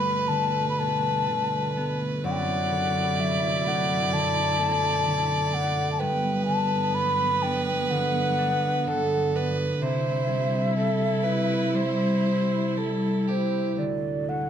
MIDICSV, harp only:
0, 0, Header, 1, 2, 480
1, 0, Start_track
1, 0, Tempo, 988468
1, 1088, Time_signature, 4, 2, 24, 8
1, 1088, Tempo, 940439
1, 3488, Tempo, 956938
1, 5408, Tempo, 1008403
1, 7181, End_track
2, 0, Start_track
2, 0, Title_t, "Harp"
2, 0, Program_c, 0, 46
2, 0, Note_on_c, 0, 43, 54
2, 0, Note_on_c, 0, 50, 48
2, 0, Note_on_c, 0, 55, 44
2, 0, Note_on_c, 0, 59, 44
2, 133, Note_off_c, 0, 50, 0
2, 139, Note_on_c, 0, 50, 50
2, 154, Note_off_c, 0, 55, 0
2, 384, Note_off_c, 0, 59, 0
2, 386, Note_on_c, 0, 59, 57
2, 617, Note_off_c, 0, 50, 0
2, 622, Note_on_c, 0, 50, 48
2, 856, Note_off_c, 0, 59, 0
2, 858, Note_on_c, 0, 59, 50
2, 1052, Note_off_c, 0, 43, 0
2, 1087, Note_on_c, 0, 42, 67
2, 1113, Note_off_c, 0, 50, 0
2, 1327, Note_on_c, 0, 50, 47
2, 1574, Note_on_c, 0, 54, 47
2, 1809, Note_on_c, 0, 57, 50
2, 2046, Note_off_c, 0, 50, 0
2, 2052, Note_on_c, 0, 50, 57
2, 2078, Note_off_c, 0, 54, 0
2, 2286, Note_off_c, 0, 57, 0
2, 2288, Note_on_c, 0, 57, 57
2, 2432, Note_off_c, 0, 59, 0
2, 2524, Note_off_c, 0, 50, 0
2, 2530, Note_on_c, 0, 50, 53
2, 2769, Note_off_c, 0, 57, 0
2, 2771, Note_on_c, 0, 57, 51
2, 3011, Note_on_c, 0, 43, 65
2, 3033, Note_off_c, 0, 42, 0
2, 3033, Note_off_c, 0, 50, 0
2, 3251, Note_on_c, 0, 50, 47
2, 3488, Note_on_c, 0, 59, 52
2, 3733, Note_on_c, 0, 62, 56
2, 3965, Note_off_c, 0, 50, 0
2, 3971, Note_on_c, 0, 50, 59
2, 4208, Note_off_c, 0, 62, 0
2, 4210, Note_on_c, 0, 62, 61
2, 4448, Note_off_c, 0, 50, 0
2, 4453, Note_off_c, 0, 57, 0
2, 4454, Note_on_c, 0, 50, 62
2, 4694, Note_off_c, 0, 62, 0
2, 4696, Note_on_c, 0, 62, 52
2, 4930, Note_on_c, 0, 48, 69
2, 4955, Note_off_c, 0, 43, 0
2, 4955, Note_off_c, 0, 50, 0
2, 4960, Note_off_c, 0, 59, 0
2, 5159, Note_on_c, 0, 55, 47
2, 5409, Note_on_c, 0, 60, 54
2, 5637, Note_on_c, 0, 64, 47
2, 5863, Note_off_c, 0, 55, 0
2, 5869, Note_on_c, 0, 55, 55
2, 6065, Note_off_c, 0, 62, 0
2, 6114, Note_off_c, 0, 64, 0
2, 6116, Note_on_c, 0, 64, 54
2, 6352, Note_off_c, 0, 55, 0
2, 6358, Note_on_c, 0, 55, 49
2, 6602, Note_off_c, 0, 64, 0
2, 6604, Note_on_c, 0, 64, 43
2, 6810, Note_off_c, 0, 48, 0
2, 6837, Note_off_c, 0, 60, 0
2, 6840, Note_on_c, 0, 50, 52
2, 6875, Note_off_c, 0, 55, 0
2, 7082, Note_on_c, 0, 57, 37
2, 7181, Note_off_c, 0, 50, 0
2, 7181, Note_off_c, 0, 57, 0
2, 7181, Note_off_c, 0, 64, 0
2, 7181, End_track
0, 0, End_of_file